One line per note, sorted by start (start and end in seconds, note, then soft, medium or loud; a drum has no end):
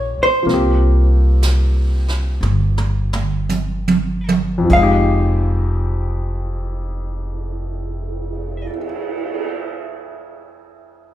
0.00 0.14 A#1 medium
0.00 0.41 F3 soft
0.00 0.45 A#3 soft
0.00 0.50 C#4 soft
0.00 0.50 G4 medium
0.00 0.22 C#5 medium
0.18 muted upright bass stroke soft
0.23 4.30 C5 medium
0.43 2.37 C2 medium
0.43 4.63 F3 soft
0.43 4.71 A#3 soft
0.49 4.73 C4 soft
0.49 brush sweep soft
0.49 snare soft
0.54 4.75 G4 soft
1.43 snare soft
1.43 hi-hat pedal soft
2.08 snare soft
2.41 4.67 G1 medium
2.41 mid tom soft
2.78 mid tom soft
3.13 mid tom medium
3.49 hi-hat pedal soft
3.49 high tom soft
3.88 high tom medium
4.29 high tom medium
4.58 8.58 F2 medium
4.65 8.64 F3 soft
4.70 8.66 F1 medium
4.70 8.70 G#3 soft
4.70 8.69 F5 medium
4.70 kick soft
4.70 ride soft
4.76 8.76 D#4 soft
4.83 8.83 G4 medium
5.56 cymbal swell soft